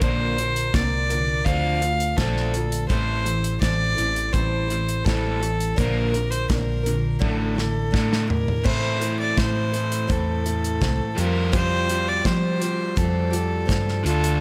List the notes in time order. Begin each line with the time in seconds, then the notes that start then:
Already playing: A#1
0.01 A#2 D3 F3 A#3 D4 A#4 C5, kick, closed hi-hat
0.37 A#2 D3 F3 A#3 D4 A#4, closed hi-hat
0.56 closed hi-hat
0.73 C2 A#2 D3 F3 A#3 D4 A#4 D5, kick, snare, closed hi-hat
1.09 A#2 D3 F3 A#3 D4 A#4, closed hi-hat
1.45 D2 D3 F3 A3 C4 D4 F4 A4 F5, kick, closed hi-hat
1.81 D3 A3 C4 F4 A4, closed hi-hat
2.00 closed hi-hat
2.17 A#1 D3 F3 A3 C4 D4 F4 A4, kick, snare, closed hi-hat
2.21 A4
2.37 snare
2.53 D3 A3 C4 F4 A4, closed hi-hat
2.72 closed hi-hat
2.88 A1 A2 E3 G3 A3 C4 E4 A4 C5, kick, closed hi-hat
3.25 A2 E3 G3 C4 E4 A4, closed hi-hat
3.44 closed hi-hat
3.59 A1 G3 C4 E4 A4 D5, kick, snare, closed hi-hat
3.63 A2 E3
3.95 A1 A2 E3 G3 C4 E4 A4, closed hi-hat
4.16 closed hi-hat
4.32 A1 A2 E3 G3 C4 E4 A4 C5, kick, closed hi-hat
4.68 A2 E3 G3 C4 E4 A4, closed hi-hat
4.88 closed hi-hat
5.04 A1 A2 E3 G3 A3 C4 E4 A4, kick, snare, closed hi-hat
5.40 A2 E3 G3 C4 E4 A4, closed hi-hat
5.60 closed hi-hat
5.76 A#1 A#2 D3 F3 A#3 D4 A#4, kick, closed hi-hat
5.80 A#3
6.12 A#2 D3 F3 A#3 D4 A#4, closed hi-hat
6.30 C5, closed hi-hat
6.48 A#1 A#2 D3 F3 A#3 D4 A#4, kick, snare, closed hi-hat
6.83 A#2 D3 F3 A#3 D4 A#4, closed hi-hat
7.19 A1 A2 D3 A3 D4 E4 A4, kick, high tom
7.23 A3
7.55 A2 D3 A3 D4 E4 A4, snare
7.91 A2 D3 A3 D4 E4 A4, kick, snare
7.95 A3
8.13 snare
8.27 A2 D3 D4 E4 A#4, floor tom
8.48 floor tom
8.64 A2 E3 A3 C4 E4 A4 C5, kick, crash
8.68 E4
9.00 A3 C4 E4 A4, closed hi-hat
9.19 D5
9.36 A2 A3 C4 E4 A4 C5, kick, snare, closed hi-hat
9.72 A3 C4 E4 A4, closed hi-hat
9.92 closed hi-hat
10.07 E2 A2 E3 A3 C4 E4 A4, kick, closed hi-hat
10.11 A4
10.44 A3 C4 E4 A4, closed hi-hat
10.64 closed hi-hat
10.81 C2 A3 C4 E4 A4, kick, snare, closed hi-hat
11.16 F2 F3 G3 C4 F4 G4 A#4, closed hi-hat
11.20 F4
11.52 F3 C4 F4 G4 C5, kick, closed hi-hat
11.87 F4 G4, closed hi-hat
11.91 C4
12.08 D5
12.23 F3 C4 F4 G4 C5, kick, snare, closed hi-hat
12.60 C4 F4 G4, closed hi-hat
12.96 F2 F3 C4 F4 G4 A4, kick, closed hi-hat
13.31 C4 F4 G4, closed hi-hat
13.66 G2 F3 C4 F4 G4, kick, closed hi-hat
13.70 snare
13.88 snare
14.03 D2 D3 A3 D4 F4 A4, closed hi-hat
14.07 F4
14.24 closed hi-hat